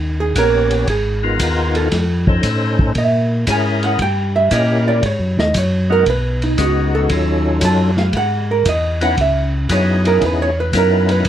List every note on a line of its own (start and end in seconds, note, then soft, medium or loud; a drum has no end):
0.00 0.34 D#2 medium
0.20 0.36 G#4 medium
0.35 0.86 A#1 medium
0.35 0.88 B3 medium
0.35 0.88 C#4 medium
0.35 0.88 G4 medium
0.35 0.85 A#4 loud
0.35 0.88 C#5 medium
0.35 kick soft
0.35 hi-hat pedal medium
0.35 ride medium
0.71 ride soft
0.87 1.38 G#1 medium
0.87 1.72 G#4 medium
0.87 kick soft
0.87 ride medium
1.23 1.88 B3 medium
1.23 1.88 D#4 medium
1.23 1.89 F4 medium
1.23 1.89 A#4 medium
1.39 1.90 D#2 medium
1.39 kick soft
1.39 hi-hat pedal medium
1.39 ride medium
1.75 2.40 A4 medium
1.75 ride soft
1.91 2.42 F2 medium
1.91 kick soft
1.91 snare soft
1.91 ride medium
2.27 2.92 C#4 medium
2.27 2.93 D#4 medium
2.27 2.93 A4 medium
2.27 2.93 C5 medium
2.27 kick medium
2.43 2.94 A2 medium
2.43 kick soft
2.43 hi-hat pedal medium
2.43 ride medium
2.79 kick medium
2.95 3.46 A#2 medium
2.95 3.45 E5 medium
2.95 kick soft
2.95 ride medium
3.47 3.98 G#2 medium
3.47 3.99 C#4 medium
3.47 4.00 E4 medium
3.47 4.00 G#4 medium
3.47 4.00 A#4 medium
3.47 3.83 G#5 medium
3.47 kick soft
3.47 hi-hat pedal medium
3.47 ride medium
3.83 3.99 F#5 medium
3.83 ride soft
3.99 4.49 G2 medium
3.99 4.35 G5 loud
3.99 kick soft
3.99 ride medium
4.36 4.51 E5 medium
4.51 5.01 A#2 medium
4.51 5.03 C#4 medium
4.51 5.03 E4 medium
4.51 5.04 G4 medium
4.51 5.04 A#4 medium
4.51 4.87 D#5 medium
4.51 kick soft
4.51 hi-hat pedal medium
4.51 ride medium
4.88 5.03 D5 medium
5.03 5.20 G#2 medium
5.03 5.39 C#5 medium
5.03 kick soft
5.03 ride medium
5.20 5.37 F#2 medium
5.37 5.53 D#2 medium
5.37 5.55 D#5 loud
5.37 snare medium
5.54 6.05 F#2 medium
5.54 5.91 C#5 medium
5.54 kick soft
5.54 hi-hat pedal medium
5.54 ride medium
5.90 6.05 G#3 medium
5.90 6.05 B3 medium
5.90 6.05 D#4 medium
5.90 6.05 F#4 medium
5.90 6.05 A#4 medium
5.90 6.07 A#4 medium
6.06 6.57 B1 medium
6.06 6.43 B4 medium
6.06 kick soft
6.06 ride medium
6.42 6.59 D#4 medium
6.42 ride soft
6.58 7.09 C#2 medium
6.58 7.10 G#3 medium
6.58 7.10 B3 medium
6.58 7.10 D#4 medium
6.58 7.11 F#4 medium
6.58 6.94 F#4 medium
6.58 kick soft
6.58 hi-hat pedal medium
6.58 ride medium
6.95 7.43 A4 medium
7.09 7.60 D#2 medium
7.09 7.91 F#3 medium
7.09 7.91 C#4 medium
7.09 7.91 D#4 medium
7.09 7.91 F4 medium
7.09 7.91 A4 medium
7.09 kick soft
7.09 ride medium
7.61 8.12 F#2 medium
7.61 7.98 A5 medium
7.61 kick soft
7.61 hi-hat pedal medium
7.61 ride medium
7.97 8.14 F5 medium
7.97 snare soft
8.13 8.64 G#2 medium
8.13 8.50 F#5 loud
8.13 kick soft
8.13 ride soft
8.51 8.66 A#4 medium
8.65 9.16 E2 medium
8.65 9.02 D#5 medium
8.65 kick soft
8.65 hi-hat pedal soft
8.65 ride medium
9.01 9.16 B3 medium
9.01 9.16 C#4 medium
9.01 9.16 D#4 medium
9.01 9.16 E4 medium
9.01 9.17 B4 medium
9.01 9.18 F#5 loud
9.01 ride soft
9.17 9.68 C#2 medium
9.17 9.68 E5 medium
9.17 kick soft
9.17 ride medium
9.69 10.20 F#2 medium
9.69 10.50 B3 medium
9.69 10.50 C#4 medium
9.69 10.50 D#4 medium
9.69 10.51 E4 medium
9.69 10.51 G#4 medium
9.69 10.06 C#5 medium
9.69 kick soft
9.69 hi-hat pedal medium
9.69 ride medium
10.05 10.22 A#4 medium
10.05 ride soft
10.21 10.72 E2 medium
10.21 kick soft
10.21 ride soft
10.26 10.40 B4 medium
10.42 10.57 C#5 loud
10.60 10.75 B4 medium
10.73 11.24 F#2 medium
10.73 11.25 B3 medium
10.73 11.25 C#4 medium
10.73 11.25 D#4 medium
10.73 11.26 E4 medium
10.73 11.26 A#4 medium
10.73 kick soft
10.73 hi-hat pedal medium
10.73 ride medium
10.78 11.10 A#4 medium
11.09 11.26 B4 medium
11.09 ride soft
11.25 11.29 F2 medium
11.25 kick soft
11.25 ride medium